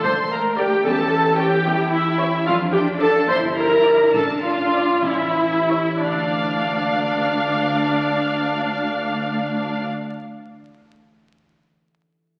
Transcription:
Already playing: D3 A3 D4 F4 A4 D5
0.03 A1 A3 C5 F5 C6
0.17 A5
0.31 A#4 F5 A#5
0.44 A4
0.57 D4 G4 D5 G5
0.71 A3
0.84 E2 E3 C#4 A4 A5
0.91 G4
0.98 E4 A4
1.12 C#4
1.26 G4
1.38 G4 A4 C#5 G5
1.53 C#5
1.66 E2 E4
1.80 A5
1.92 E4 E5 G5
2.06 A4
2.20 C#4 C#5
2.33 E4
2.46 F2 F3 D4 F4 F5
2.60 D4
2.73 F4 G4 G5
2.88 A4
3.00 A4 D5 A5
3.15 F5
3.28 G1 G2 E4 C5 C6
3.43 D3
3.56 D4 A#4 A#5
3.71 D3
3.85 A#4 D5
3.99 D5
4.13 A1 A2 D4 A4 A5
4.29 A3
4.43 D4 F4 F5
4.59 F4
4.74 D5
4.89 D5
5.03 A1 A2 C#4 E4 E5
5.20 E3
5.36 C#4
5.53 G4
5.70 A4 C#5
5.87 C#5
6.02 D2 D3 D4 D5 F5
6.10 D4
6.16 F4
6.23 A4
6.30 F5

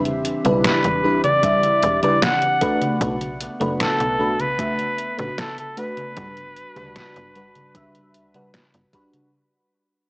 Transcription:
Already playing: E1 E3 C4 D4 G4
0.05 closed hi-hat, high conga
0.25 closed hi-hat
0.44 B1 G3 D4 E4 B4, closed hi-hat, high conga
0.64 B4, snare, closed hi-hat, high conga
0.84 E1, closed hi-hat, high conga
1.03 G3 D4 E4 B4
1.24 D5, closed hi-hat, high conga
1.43 G3 D4 E4 E5, kick, closed hi-hat, high conga
1.63 closed hi-hat, high conga
1.83 E1, closed hi-hat
2.02 D1 G3 D4 E4 B4 D5, closed hi-hat, high conga
2.22 F#5, snare, closed hi-hat, high conga
2.42 closed hi-hat, high conga
2.61 A3 B3 D4 F#4 B4, kick, closed hi-hat
2.81 closed hi-hat, high conga
3.01 B1 A3 D4 F#4 B4, kick, closed hi-hat, high conga
3.21 closed hi-hat, high conga
3.40 closed hi-hat
3.60 F#1 A3 D4 F#4 B4, closed hi-hat, high conga
3.80 A4, snare, closed hi-hat, high conga
4.00 B1, closed hi-hat, high conga
4.19 A3 D4 F#4 B4
4.40 B4, closed hi-hat, high conga
4.58 A3 D4 F#4 E5, kick, closed hi-hat, high conga
4.79 closed hi-hat, high conga
4.98 closed hi-hat
5.18 A1 A3 D4 F#4 B4, closed hi-hat, high conga
5.38 A4, snare, closed hi-hat, high conga
5.58 A4, closed hi-hat, high conga
5.77 A3 D4 F#4 B4, closed hi-hat
5.97 closed hi-hat, high conga
6.16 G1 G3 D4 F#4 B4, kick, closed hi-hat, high conga
6.37 closed hi-hat, high conga
6.56 closed hi-hat
6.76 D2 G3 D4 F#4 B4, closed hi-hat, high conga
6.96 snare, closed hi-hat, high conga
7.16 G1, closed hi-hat, high conga
7.35 G3 D4 F#4 B4, closed hi-hat
7.55 closed hi-hat, high conga
7.75 G3 D4 F#4 E5, kick, closed hi-hat, high conga
7.95 closed hi-hat, high conga
8.14 D2, closed hi-hat
8.34 B1 G3 D4 F#4 B4, closed hi-hat, high conga
8.54 snare, closed hi-hat, high conga
8.74 G1, closed hi-hat, high conga
8.93 G3 D4 F#4 B4, kick, closed hi-hat
9.13 closed hi-hat, high conga

